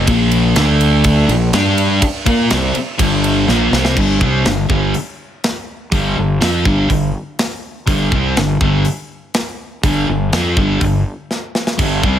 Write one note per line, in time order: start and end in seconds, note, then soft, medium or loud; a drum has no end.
0.07 0.53 A#1 medium
0.07 0.55 A#2 medium
0.07 0.55 F3 loud
0.07 0.55 A#3 loud
0.07 kick loud
0.07 ride loud
0.31 ride medium
0.56 1.25 D2 medium
0.56 1.28 D3 medium
0.56 1.29 A3 medium
0.56 1.29 D4 medium
0.56 snare loud
0.56 ride medium
0.81 ride medium
1.04 kick loud
1.04 ride medium
1.28 1.51 A#1 medium
1.28 1.49 A#2 medium
1.28 1.49 F3 medium
1.28 ride medium
1.53 1.98 G2 medium
1.53 2.01 G3 loud
1.53 2.01 D4 medium
1.53 2.02 G4 loud
1.53 snare loud
1.53 ride loud
1.78 ride medium
2.02 muted distorted electric guitar stroke medium
2.02 muted fingered electric bass stroke soft
2.02 kick loud
2.02 ride loud
2.25 2.49 A#2 medium
2.25 2.49 A#3 medium
2.25 2.50 F4 medium
2.25 2.50 A#4 loud
2.25 kick loud
2.25 ride medium
2.50 2.74 C2 medium
2.50 2.74 C3 medium
2.50 2.74 G3 medium
2.50 2.75 C4 loud
2.50 snare loud
2.50 ride medium
2.74 muted distorted electric guitar stroke medium
2.74 muted fingered electric bass stroke soft
2.74 ride medium
2.98 3.45 G1 medium
2.98 3.47 G2 medium
2.98 3.46 D3 medium
2.98 3.47 G3 loud
2.98 kick loud
2.98 ride loud
3.24 ride medium
3.47 3.71 A#1 medium
3.47 3.71 A#2 medium
3.47 3.71 F3 medium
3.47 3.72 A#3 loud
3.47 snare medium
3.71 3.95 C2 medium
3.71 3.95 C3 medium
3.71 3.95 G3 medium
3.71 3.96 C4 medium
3.71 snare medium
3.85 snare medium
3.95 4.20 G1 medium
3.95 4.19 G2 medium
3.95 4.20 D3 medium
3.95 4.19 G3 loud
3.95 kick loud
3.95 crash loud
4.20 4.44 C2 medium
4.20 4.44 C3 medium
4.20 4.44 G3 medium
4.20 4.45 C4 medium
4.20 kick loud
4.44 4.68 G1 medium
4.44 4.64 G2 medium
4.44 4.65 D3 medium
4.44 snare loud
4.44 open hi-hat soft
4.69 4.92 G1 medium
4.69 4.93 G2 medium
4.69 4.94 D3 medium
4.69 4.94 G3 medium
4.69 kick medium
4.94 open hi-hat soft
5.44 snare loud
5.44 open hi-hat soft
5.92 6.15 G1 medium
5.92 6.16 G2 medium
5.92 6.16 D3 medium
5.92 6.16 G3 loud
5.92 kick loud
5.92 open hi-hat medium
6.17 6.40 G1 medium
6.17 6.36 G2 medium
6.17 6.37 D3 medium
6.41 6.64 F2 medium
6.41 6.64 F3 medium
6.41 6.65 C4 medium
6.41 6.65 F4 medium
6.41 snare loud
6.41 open hi-hat medium
6.65 6.88 G1 medium
6.65 6.88 G2 medium
6.65 6.88 D3 medium
6.65 6.89 G3 medium
6.65 kick medium
6.89 7.13 G1 medium
6.89 7.09 G2 medium
6.89 7.09 D3 medium
6.89 kick medium
6.89 open hi-hat medium
7.39 snare loud
7.39 open hi-hat soft
7.86 8.10 G1 medium
7.86 8.11 G2 medium
7.86 8.11 D3 loud
7.86 8.11 G3 medium
7.86 kick loud
7.86 open hi-hat medium
8.12 8.35 C2 medium
8.12 8.36 C3 medium
8.12 8.36 G3 medium
8.12 8.36 C4 loud
8.12 kick loud
8.37 8.59 G1 medium
8.37 8.56 G2 medium
8.37 8.56 D3 medium
8.37 snare loud
8.37 open hi-hat soft
8.61 8.83 G1 medium
8.61 8.85 G2 medium
8.61 8.85 D3 medium
8.61 8.85 G3 medium
8.61 kick medium
8.85 open hi-hat medium
9.34 snare loud
9.34 open hi-hat soft
9.83 10.06 G1 medium
9.83 10.06 G2 medium
9.83 10.07 D3 medium
9.83 10.07 G3 loud
9.83 kick loud
9.83 open hi-hat medium
10.07 10.31 G1 medium
10.07 10.27 G2 medium
10.07 10.27 D3 medium
10.33 10.55 F2 medium
10.33 10.56 F3 medium
10.33 10.56 C4 medium
10.33 10.57 F4 medium
10.33 snare loud
10.33 open hi-hat medium
10.57 10.79 G1 medium
10.57 10.79 G2 medium
10.57 10.80 D3 medium
10.57 10.81 G3 medium
10.57 kick medium
10.81 11.04 G1 medium
10.81 11.00 G2 medium
10.81 11.00 D3 medium
10.81 kick medium
10.81 open hi-hat medium
11.31 snare medium
11.55 snare medium
11.67 snare medium
11.78 12.01 G1 medium
11.78 12.02 G2 medium
11.78 12.02 D3 medium
11.78 12.02 G3 medium
11.78 kick loud
11.78 open hi-hat medium
11.78 crash medium
12.02 12.19 C2 medium
12.02 12.19 C3 medium
12.02 12.19 G3 medium
12.02 12.19 C4 medium
12.02 kick medium